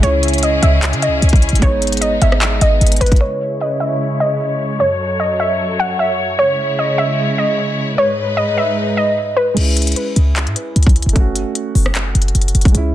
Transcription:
0.00 C#2 C#3 G#3 C#4 E4 G#4 C#5, closed hi-hat
0.06 E4
0.23 closed hi-hat
0.28 closed hi-hat
0.34 closed hi-hat
0.38 closed hi-hat
0.43 D#5, closed hi-hat
0.62 C#2 E5, closed hi-hat
0.83 clap, closed hi-hat
0.93 C#3, closed hi-hat
1.02 D#5, closed hi-hat
1.08 C#2
1.22 C#2, closed hi-hat
1.29 kick, closed hi-hat
1.36 closed hi-hat
1.42 closed hi-hat
1.49 G#1, closed hi-hat
1.55 G#3, closed hi-hat
1.62 G#3 B3 D#4 C#5, kick, closed hi-hat
1.82 closed hi-hat
1.87 closed hi-hat
1.92 closed hi-hat
1.97 closed hi-hat
2.01 D#5, closed hi-hat
2.22 G#1 E5, closed hi-hat
2.32 cross-stick
2.42 clap, closed hi-hat
2.61 G#1 D#5, closed hi-hat
2.81 G#1, closed hi-hat
2.87 closed hi-hat
2.92 closed hi-hat
2.96 closed hi-hat
3.01 G#1 B4, closed hi-hat
3.06 closed hi-hat
3.12 kick, closed hi-hat
3.16 closed hi-hat
3.21 C#3 G#3 E4 C#5
3.61 D#5
3.80 E5
4.20 D#5
4.80 F#2 F#3 A4 C#5
5.20 D#5
5.40 E5
5.79 F#5
5.99 E5
6.39 C#3 G#3 E4 C#5
6.79 D#5
6.98 E5
7.38 D#5
7.98 G#2 G#3 D#4 B4 C#5
8.37 D#5
8.57 E5
8.97 D#5
9.37 B4
9.54 C#2 G#3 C#4, closed hi-hat, crash
9.60 E4
9.77 closed hi-hat
9.82 closed hi-hat
9.87 closed hi-hat
9.92 closed hi-hat
9.96 closed hi-hat
10.16 C#2, closed hi-hat
10.36 clap, closed hi-hat
10.47 G#2, closed hi-hat
10.56 closed hi-hat
10.76 C#2, closed hi-hat
10.83 kick, closed hi-hat
10.89 closed hi-hat
10.96 closed hi-hat
11.02 F#1, closed hi-hat
11.09 A3, closed hi-hat
11.16 C#4 F#4, kick, closed hi-hat
11.36 closed hi-hat
11.55 closed hi-hat
11.75 F#1, open hi-hat
11.86 cross-stick
11.95 clap, closed hi-hat
12.15 F#1, closed hi-hat
12.22 closed hi-hat
12.28 closed hi-hat
12.35 F#1, closed hi-hat
12.42 closed hi-hat
12.48 closed hi-hat
12.55 F#1, closed hi-hat
12.61 closed hi-hat
12.65 kick, closed hi-hat
12.68 G#3, closed hi-hat
12.75 C#2 C#4 E4, closed hi-hat

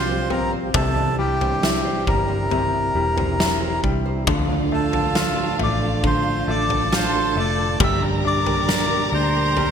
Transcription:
Already playing: C2 C3 F3 G3 C4 F4 G4 C5 C6
0.09 C5
0.30 A#1 C4 A#4 A#5, floor tom
0.52 C5
0.74 C2 C3 E3 G3 D4 A4 A5, kick, floor tom
0.97 D4
1.18 G3 E4 G4 G5
1.41 C5, floor tom
1.62 E4, snare
1.85 C5
2.07 G1 G3 D4 A#4 A#5, kick, floor tom
2.28 C5
2.50 C3 E4, floor tom
2.72 D4
2.94 E1 G3 E4
3.17 C5, floor tom
3.39 E4, snare
3.61 C5
3.82 C2 G3 D4, kick
4.06 C5
4.27 D2 A2 D3 F3 D4 F4 F5, kick, floor tom
4.49 D4
4.71 A3 F4 A4 A5
4.93 A4, floor tom
5.15 F4, snare
5.38 A4
5.59 A1 A3 D4 D5, floor tom
5.63 D6
5.82 A4
6.04 D3 C5 C6, kick, floor tom
6.27 D4
6.48 A1 A3 F4 A4 D5 A5 D6
6.70 A4, floor tom
6.93 F4 C5 C6, snare
7.15 A4
7.35 F1 A3 D4 D5
7.40 D6
7.58 A4
7.79 G1 A#2 G3 G4 A#4 A#5, kick, floor tom
7.84 E5 E6
8.02 D4
8.25 D4 G4 D5 D6
8.46 A#4, floor tom
8.68 G4 A#4, snare
8.91 A#4
9.12 D2 D4 C5 C6
9.35 A#4
9.57 G3, floor tom

